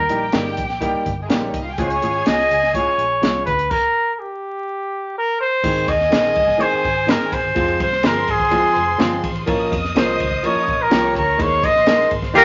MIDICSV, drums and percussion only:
0, 0, Header, 1, 2, 480
1, 0, Start_track
1, 0, Key_signature, -4, "major"
1, 0, Tempo, 480384
1, 1784, Time_signature, 4, 2, 24, 8
1, 12436, End_track
2, 0, Start_track
2, 0, Title_t, "Drums"
2, 92, Note_on_c, 9, 42, 93
2, 192, Note_off_c, 9, 42, 0
2, 323, Note_on_c, 9, 42, 89
2, 331, Note_on_c, 9, 38, 112
2, 423, Note_off_c, 9, 42, 0
2, 431, Note_off_c, 9, 38, 0
2, 569, Note_on_c, 9, 42, 82
2, 579, Note_on_c, 9, 36, 84
2, 669, Note_off_c, 9, 42, 0
2, 679, Note_off_c, 9, 36, 0
2, 690, Note_on_c, 9, 38, 36
2, 790, Note_off_c, 9, 38, 0
2, 810, Note_on_c, 9, 36, 78
2, 815, Note_on_c, 9, 42, 78
2, 910, Note_off_c, 9, 36, 0
2, 915, Note_off_c, 9, 42, 0
2, 1059, Note_on_c, 9, 42, 58
2, 1061, Note_on_c, 9, 36, 82
2, 1159, Note_off_c, 9, 42, 0
2, 1161, Note_off_c, 9, 36, 0
2, 1297, Note_on_c, 9, 42, 92
2, 1303, Note_on_c, 9, 38, 117
2, 1397, Note_off_c, 9, 42, 0
2, 1403, Note_off_c, 9, 38, 0
2, 1538, Note_on_c, 9, 36, 83
2, 1538, Note_on_c, 9, 42, 91
2, 1638, Note_off_c, 9, 36, 0
2, 1638, Note_off_c, 9, 42, 0
2, 1779, Note_on_c, 9, 42, 102
2, 1780, Note_on_c, 9, 36, 110
2, 1879, Note_off_c, 9, 42, 0
2, 1880, Note_off_c, 9, 36, 0
2, 1901, Note_on_c, 9, 42, 52
2, 2001, Note_off_c, 9, 42, 0
2, 2021, Note_on_c, 9, 42, 90
2, 2121, Note_off_c, 9, 42, 0
2, 2256, Note_on_c, 9, 42, 93
2, 2264, Note_on_c, 9, 38, 114
2, 2356, Note_off_c, 9, 42, 0
2, 2364, Note_off_c, 9, 38, 0
2, 2385, Note_on_c, 9, 38, 36
2, 2485, Note_off_c, 9, 38, 0
2, 2508, Note_on_c, 9, 42, 75
2, 2608, Note_off_c, 9, 42, 0
2, 2631, Note_on_c, 9, 38, 37
2, 2731, Note_off_c, 9, 38, 0
2, 2739, Note_on_c, 9, 36, 86
2, 2743, Note_on_c, 9, 42, 86
2, 2839, Note_off_c, 9, 36, 0
2, 2843, Note_off_c, 9, 42, 0
2, 2987, Note_on_c, 9, 42, 55
2, 3086, Note_off_c, 9, 42, 0
2, 3226, Note_on_c, 9, 42, 87
2, 3232, Note_on_c, 9, 38, 121
2, 3326, Note_off_c, 9, 42, 0
2, 3332, Note_off_c, 9, 38, 0
2, 3464, Note_on_c, 9, 36, 84
2, 3466, Note_on_c, 9, 42, 88
2, 3564, Note_off_c, 9, 36, 0
2, 3566, Note_off_c, 9, 42, 0
2, 3586, Note_on_c, 9, 42, 57
2, 3686, Note_off_c, 9, 42, 0
2, 3705, Note_on_c, 9, 49, 87
2, 3706, Note_on_c, 9, 36, 108
2, 3805, Note_off_c, 9, 49, 0
2, 3806, Note_off_c, 9, 36, 0
2, 5631, Note_on_c, 9, 36, 108
2, 5632, Note_on_c, 9, 49, 96
2, 5731, Note_off_c, 9, 36, 0
2, 5732, Note_off_c, 9, 49, 0
2, 5755, Note_on_c, 9, 51, 42
2, 5855, Note_off_c, 9, 51, 0
2, 5874, Note_on_c, 9, 36, 109
2, 5875, Note_on_c, 9, 51, 77
2, 5974, Note_off_c, 9, 36, 0
2, 5975, Note_off_c, 9, 51, 0
2, 6002, Note_on_c, 9, 38, 37
2, 6102, Note_off_c, 9, 38, 0
2, 6112, Note_on_c, 9, 51, 83
2, 6120, Note_on_c, 9, 38, 125
2, 6212, Note_off_c, 9, 51, 0
2, 6220, Note_off_c, 9, 38, 0
2, 6236, Note_on_c, 9, 38, 37
2, 6336, Note_off_c, 9, 38, 0
2, 6351, Note_on_c, 9, 51, 65
2, 6360, Note_on_c, 9, 36, 86
2, 6451, Note_off_c, 9, 51, 0
2, 6460, Note_off_c, 9, 36, 0
2, 6471, Note_on_c, 9, 36, 84
2, 6482, Note_on_c, 9, 38, 36
2, 6571, Note_off_c, 9, 36, 0
2, 6582, Note_off_c, 9, 38, 0
2, 6600, Note_on_c, 9, 51, 70
2, 6700, Note_off_c, 9, 51, 0
2, 6840, Note_on_c, 9, 36, 84
2, 6845, Note_on_c, 9, 51, 47
2, 6940, Note_off_c, 9, 36, 0
2, 6945, Note_off_c, 9, 51, 0
2, 7078, Note_on_c, 9, 51, 82
2, 7084, Note_on_c, 9, 38, 123
2, 7178, Note_off_c, 9, 51, 0
2, 7184, Note_off_c, 9, 38, 0
2, 7314, Note_on_c, 9, 36, 88
2, 7318, Note_on_c, 9, 51, 83
2, 7414, Note_off_c, 9, 36, 0
2, 7418, Note_off_c, 9, 51, 0
2, 7550, Note_on_c, 9, 51, 84
2, 7553, Note_on_c, 9, 36, 121
2, 7650, Note_off_c, 9, 51, 0
2, 7653, Note_off_c, 9, 36, 0
2, 7674, Note_on_c, 9, 51, 46
2, 7774, Note_off_c, 9, 51, 0
2, 7794, Note_on_c, 9, 36, 112
2, 7796, Note_on_c, 9, 51, 75
2, 7894, Note_off_c, 9, 36, 0
2, 7896, Note_off_c, 9, 51, 0
2, 7917, Note_on_c, 9, 38, 38
2, 8017, Note_off_c, 9, 38, 0
2, 8023, Note_on_c, 9, 51, 89
2, 8032, Note_on_c, 9, 38, 127
2, 8123, Note_off_c, 9, 51, 0
2, 8131, Note_off_c, 9, 38, 0
2, 8270, Note_on_c, 9, 51, 68
2, 8279, Note_on_c, 9, 36, 88
2, 8370, Note_off_c, 9, 51, 0
2, 8379, Note_off_c, 9, 36, 0
2, 8389, Note_on_c, 9, 36, 90
2, 8489, Note_off_c, 9, 36, 0
2, 8506, Note_on_c, 9, 36, 87
2, 8507, Note_on_c, 9, 51, 78
2, 8606, Note_off_c, 9, 36, 0
2, 8607, Note_off_c, 9, 51, 0
2, 8757, Note_on_c, 9, 51, 51
2, 8857, Note_off_c, 9, 51, 0
2, 8988, Note_on_c, 9, 51, 73
2, 8994, Note_on_c, 9, 38, 127
2, 9088, Note_off_c, 9, 51, 0
2, 9094, Note_off_c, 9, 38, 0
2, 9229, Note_on_c, 9, 36, 87
2, 9229, Note_on_c, 9, 51, 80
2, 9329, Note_off_c, 9, 36, 0
2, 9329, Note_off_c, 9, 51, 0
2, 9347, Note_on_c, 9, 51, 48
2, 9447, Note_off_c, 9, 51, 0
2, 9465, Note_on_c, 9, 51, 92
2, 9468, Note_on_c, 9, 36, 113
2, 9565, Note_off_c, 9, 51, 0
2, 9568, Note_off_c, 9, 36, 0
2, 9591, Note_on_c, 9, 51, 44
2, 9691, Note_off_c, 9, 51, 0
2, 9712, Note_on_c, 9, 36, 110
2, 9717, Note_on_c, 9, 51, 79
2, 9812, Note_off_c, 9, 36, 0
2, 9817, Note_off_c, 9, 51, 0
2, 9838, Note_on_c, 9, 38, 40
2, 9938, Note_off_c, 9, 38, 0
2, 9950, Note_on_c, 9, 51, 84
2, 9959, Note_on_c, 9, 38, 121
2, 10050, Note_off_c, 9, 51, 0
2, 10059, Note_off_c, 9, 38, 0
2, 10192, Note_on_c, 9, 51, 71
2, 10196, Note_on_c, 9, 36, 88
2, 10292, Note_off_c, 9, 51, 0
2, 10296, Note_off_c, 9, 36, 0
2, 10304, Note_on_c, 9, 36, 84
2, 10404, Note_off_c, 9, 36, 0
2, 10429, Note_on_c, 9, 51, 74
2, 10529, Note_off_c, 9, 51, 0
2, 10671, Note_on_c, 9, 36, 90
2, 10674, Note_on_c, 9, 51, 48
2, 10771, Note_off_c, 9, 36, 0
2, 10773, Note_off_c, 9, 51, 0
2, 10901, Note_on_c, 9, 51, 71
2, 10907, Note_on_c, 9, 38, 127
2, 11001, Note_off_c, 9, 51, 0
2, 11007, Note_off_c, 9, 38, 0
2, 11144, Note_on_c, 9, 36, 86
2, 11152, Note_on_c, 9, 51, 75
2, 11244, Note_off_c, 9, 36, 0
2, 11252, Note_off_c, 9, 51, 0
2, 11384, Note_on_c, 9, 36, 118
2, 11386, Note_on_c, 9, 51, 87
2, 11484, Note_off_c, 9, 36, 0
2, 11486, Note_off_c, 9, 51, 0
2, 11624, Note_on_c, 9, 36, 115
2, 11627, Note_on_c, 9, 51, 79
2, 11724, Note_off_c, 9, 36, 0
2, 11727, Note_off_c, 9, 51, 0
2, 11748, Note_on_c, 9, 38, 38
2, 11848, Note_off_c, 9, 38, 0
2, 11852, Note_on_c, 9, 51, 82
2, 11861, Note_on_c, 9, 38, 114
2, 11952, Note_off_c, 9, 51, 0
2, 11961, Note_off_c, 9, 38, 0
2, 11988, Note_on_c, 9, 38, 42
2, 12087, Note_off_c, 9, 38, 0
2, 12100, Note_on_c, 9, 51, 72
2, 12105, Note_on_c, 9, 36, 90
2, 12200, Note_off_c, 9, 51, 0
2, 12205, Note_off_c, 9, 36, 0
2, 12214, Note_on_c, 9, 36, 88
2, 12218, Note_on_c, 9, 38, 37
2, 12314, Note_off_c, 9, 36, 0
2, 12318, Note_off_c, 9, 38, 0
2, 12333, Note_on_c, 9, 36, 87
2, 12342, Note_on_c, 9, 51, 68
2, 12432, Note_off_c, 9, 36, 0
2, 12436, Note_off_c, 9, 51, 0
2, 12436, End_track
0, 0, End_of_file